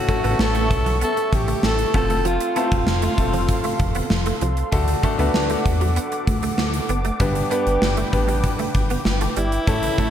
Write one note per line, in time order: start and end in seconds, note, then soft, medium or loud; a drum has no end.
0.00 0.67 A2 medium
0.00 0.08 A3 medium
0.00 0.08 C#4 medium
0.00 0.08 E4 medium
0.00 0.40 F#4 medium
0.00 0.09 A4 medium
0.00 7.16 A4 medium
0.00 1.92 E5 medium
0.00 1.92 C#6 medium
0.08 0.21 A3 medium
0.08 0.18 A3 medium
0.08 0.21 C#4 medium
0.08 0.21 E4 medium
0.08 0.21 A4 medium
0.08 kick medium
0.08 closed hi-hat medium
0.24 0.35 A1 medium
0.24 1.24 A3 medium
0.24 0.33 B3 medium
0.24 0.31 B3 medium
0.24 1.24 E4 medium
0.24 1.25 A4 medium
0.24 closed hi-hat soft
0.31 1.27 C#4 medium
0.39 0.72 A1 medium
0.39 0.98 A4 loud
0.39 snare loud
0.55 0.64 A3 medium
0.55 closed hi-hat medium
0.71 1.04 B1 medium
0.71 muted clean electric guitar stroke soft
0.71 kick medium
0.71 closed hi-hat medium
0.86 0.95 F#3 medium
0.86 closed hi-hat soft
1.01 1.11 B3 medium
1.01 1.36 A4 loud
1.01 closed hi-hat medium
1.17 muted clean electric guitar stroke soft
1.17 closed hi-hat soft
1.33 1.55 A1 medium
1.33 1.67 G4 medium
1.33 kick medium
1.33 closed hi-hat medium
1.48 1.57 A3 medium
1.48 closed hi-hat medium
1.63 1.86 A1 medium
1.63 1.95 A4 medium
1.63 muted clean electric guitar stroke soft
1.63 snare loud
1.79 closed hi-hat medium
1.94 2.39 F1 medium
1.94 2.44 A3 medium
1.94 2.04 B3 medium
1.94 2.44 C4 medium
1.94 2.44 F4 medium
1.94 2.44 A4 medium
1.94 2.24 A4 loud
1.94 4.70 F5 medium
1.94 4.70 C6 medium
1.94 kick loud
1.94 closed hi-hat medium
2.10 2.19 A3 medium
2.10 closed hi-hat soft
2.25 2.35 F3 medium
2.25 2.55 F4 medium
2.25 closed hi-hat medium
2.40 muted clean electric guitar stroke soft
2.40 closed hi-hat medium
2.56 3.06 A3 medium
2.56 2.66 B3 medium
2.56 3.06 C4 medium
2.56 3.06 F4 medium
2.56 3.77 F4 medium
2.56 3.06 A4 medium
2.56 closed hi-hat medium
2.72 2.83 F1 loud
2.72 kick medium
2.72 closed hi-hat soft
2.87 3.09 F1 loud
2.87 snare loud
3.02 3.12 A3 medium
3.02 closed hi-hat medium
3.17 3.51 F1 medium
3.17 4.18 A3 medium
3.17 4.18 C4 medium
3.17 4.18 F4 medium
3.17 4.18 A4 medium
3.17 muted clean electric guitar stroke soft
3.17 kick medium
3.17 closed hi-hat medium
3.33 3.43 F3 medium
3.33 closed hi-hat soft
3.48 kick medium
3.48 closed hi-hat medium
3.64 3.74 A3 medium
3.64 closed hi-hat soft
3.79 4.02 F1 loud
3.79 muted clean electric guitar stroke soft
3.79 kick medium
3.79 closed hi-hat medium
3.95 4.05 B3 medium
3.95 closed hi-hat medium
4.10 4.33 F1 loud
4.10 muted clean electric guitar stroke soft
4.10 snare loud
4.26 4.36 A3 medium
4.26 closed hi-hat medium
4.41 4.64 C2 medium
4.41 4.51 F3 medium
4.41 closed hi-hat medium
4.57 closed hi-hat soft
4.72 4.95 D2 medium
4.72 5.61 D3 medium
4.72 4.97 A3 medium
4.72 4.97 D4 medium
4.72 4.97 F#4 medium
4.72 4.98 A4 medium
4.72 7.18 F#5 medium
4.72 9.64 D6 medium
4.72 kick medium
4.72 closed hi-hat medium
4.88 muted clean electric guitar stroke soft
4.88 closed hi-hat medium
5.03 5.16 A3 medium
5.03 5.13 A3 medium
5.03 5.16 D4 medium
5.03 5.16 F#4 medium
5.03 5.16 A4 medium
5.03 kick medium
5.03 closed hi-hat medium
5.18 5.30 D2 medium
5.18 6.18 A3 medium
5.18 5.29 B3 medium
5.18 6.19 D4 medium
5.18 6.19 F#4 medium
5.18 6.19 B4 medium
5.18 closed hi-hat soft
5.34 5.57 D2 loud
5.34 snare loud
5.50 5.59 A3 medium
5.50 closed hi-hat medium
5.66 5.99 E2 medium
5.66 muted clean electric guitar stroke soft
5.66 kick medium
5.66 closed hi-hat medium
5.81 5.91 F#3 medium
5.81 closed hi-hat soft
5.96 6.06 B3 medium
5.96 closed hi-hat medium
6.12 muted clean electric guitar stroke soft
6.12 closed hi-hat medium
6.27 6.50 D2 medium
6.27 kick medium
6.27 closed hi-hat medium
6.43 6.52 A3 medium
6.43 closed hi-hat medium
6.58 6.81 D2 medium
6.58 muted clean electric guitar stroke soft
6.58 snare loud
6.74 closed hi-hat medium
6.89 7.12 F#1 medium
6.89 6.99 B3 medium
6.89 closed hi-hat medium
7.05 7.14 A3 medium
7.05 closed hi-hat soft
7.20 7.42 G1 loud
7.20 8.09 G2 medium
7.20 7.29 G3 medium
7.20 7.45 B3 medium
7.20 7.45 D4 medium
7.20 7.45 G4 medium
7.20 9.65 B4 medium
7.20 7.46 B4 medium
7.20 9.65 G5 medium
7.20 kick loud
7.20 closed hi-hat medium
7.35 muted clean electric guitar stroke soft
7.35 closed hi-hat medium
7.50 8.01 B3 medium
7.50 7.60 B3 medium
7.50 8.01 D4 medium
7.50 8.01 G4 medium
7.50 8.01 B4 medium
7.50 closed hi-hat medium
7.67 7.78 G1 medium
7.67 closed hi-hat soft
7.82 8.04 G1 loud
7.82 snare loud
7.97 8.07 A3 medium
7.97 closed hi-hat medium
8.12 8.46 A1 medium
8.12 9.12 B3 medium
8.12 9.13 D4 medium
8.12 9.13 G4 medium
8.12 9.13 B4 medium
8.12 muted clean electric guitar stroke soft
8.12 kick medium
8.12 closed hi-hat medium
8.28 8.37 G3 medium
8.28 closed hi-hat soft
8.44 kick medium
8.44 closed hi-hat medium
8.59 8.69 A3 medium
8.59 closed hi-hat medium
8.75 8.97 G1 medium
8.75 muted clean electric guitar stroke soft
8.75 kick medium
8.75 closed hi-hat medium
8.90 9.00 B3 medium
8.90 closed hi-hat medium
9.05 9.28 G1 loud
9.05 muted clean electric guitar stroke soft
9.05 snare loud
9.21 9.31 A3 medium
9.21 closed hi-hat medium
9.36 9.59 G1 medium
9.36 9.46 G3 medium
9.36 10.10 E4 medium
9.36 closed hi-hat medium
9.52 closed hi-hat soft
9.67 9.90 A1 loud
9.67 10.10 A2 medium
9.67 9.92 A3 medium
9.67 9.92 C#4 medium
9.67 9.93 E4 medium
9.67 10.10 A4 medium
9.67 9.93 A4 medium
9.67 10.10 E5 medium
9.67 10.10 C#6 medium
9.67 kick medium
9.67 closed hi-hat medium
9.83 muted clean electric guitar stroke soft
9.83 closed hi-hat medium
9.98 10.10 A3 medium
9.98 10.08 A3 medium
9.98 10.10 C#4 medium
9.98 10.10 E4 medium
9.98 10.10 A4 medium
9.98 kick medium
9.98 closed hi-hat medium